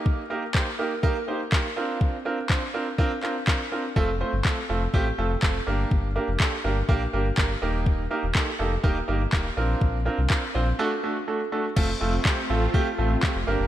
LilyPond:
<<
  \new Staff \with { instrumentName = "Grand piano" } { \time 4/4 \key f \mixolydian \tempo 4 = 123 <bes ees' g' bes'>8 <bes ees' g' bes'>16 r16 <bes ees' g' c''>16 r16 <bes ees' g' bes'>16 r16 <bes ees' g' bes'>16 r16 <bes ees' g' c''>16 r16 <bes ees' g' bes'>16 r16 <c' d' f' bes'>8~ | <c' d' f' bes'>8 <c' d' f' bes'>16 r16 <c' d' f' c''>16 r16 <c' d' f' bes'>16 r16 <c' d' f' bes'>16 r16 <c' d' f' bes'>16 r16 <c' d' f' bes'>16 r16 <c' d' f' bes'>16 r16 | <a c' f' a'>16 r16 <a c' f' c''>16 r16 <a c' f' a'>16 r16 <a c' f' a'>16 r16 <a c' f' g'>16 r16 <a c' f' a'>16 r16 <a c' f' a'>16 r16 <bes d' g' bes'>8~ | <bes d' g' bes'>8 <bes d' g' bes'>16 r16 <bes d' g' a'>16 r16 <bes d' g' bes'>16 r16 <bes d' g' bes'>16 r16 <bes d' g' bes'>16 r16 <bes d' g' bes'>16 r16 <bes ees' g' bes'>8~ |
<bes ees' g' bes'>8 <bes ees' g' bes'>16 r16 <bes ees' g' a'>16 r16 <bes ees' g' a'>16 r16 <bes ees' g' bes'>16 r16 <bes ees' g' bes'>16 r16 <bes ees' g' bes'>16 r16 <c' d' f' bes'>8~ | <c' d' f' bes'>8 <c' d' f' bes'>16 r16 <c' d' f' bes'>16 r16 <c' d' f' c''>16 r16 <a d' fis' a'>16 r16 <a d' fis' a'>16 r16 <a d' fis' a'>16 r16 <a d' fis' a'>16 r16 | <a c' f' a'>16 r16 <a c' f' a'>16 r16 <a c' f' g'>16 r16 <a c' f' a'>16 r16 <a c' f' g'>16 r16 <a c' f' a'>16 r16 <a c' f' g'>16 r16 <bes d' g' bes'>8 | }
  \new Staff \with { instrumentName = "Supersaw synth" } { \time 4/4 \key f \mixolydian r1 | r1 | r1 | r1 |
r1 | r1 | <a c' f'>2.~ <a c' f'>8 <bes d' g'>8 | }
  \new Staff \with { instrumentName = "Sub bass" } { \clef bass \time 4/4 \key f \mixolydian r1 | r1 | f,,8. g,,16 r8 f,,8 a,,8 f,,8 f,,8 g,,8 | g,,8. f,,16 r8 g,,8 bes,,8 g,,8 g,,8 ees,,8~ |
ees,,8. ees,,16 r8 f,,8 ees,,8 g,,8 ees,,8 bes,,8 | bes,,8. c,16 r8 bes,,8 r2 | f,,8 f,,8 r8 a,,8 r8 a,,8 r16 f,,16 g,,16 f,,16 | }
  \new DrumStaff \with { instrumentName = "Drums" } \drummode { \time 4/4 bd4 <hc bd>4 bd4 <hc bd>4 | bd4 <hc bd>4 bd8 hc8 <hc bd>4 | bd4 <hc bd>4 bd4 <hc bd>4 | bd4 <hc bd>4 bd4 <hc bd>4 |
bd4 <hc bd>4 bd4 <hc bd>4 | bd4 <hc bd>4 r4 r4 | <cymc bd>4 <hc bd>4 bd4 <hc bd>4 | }
>>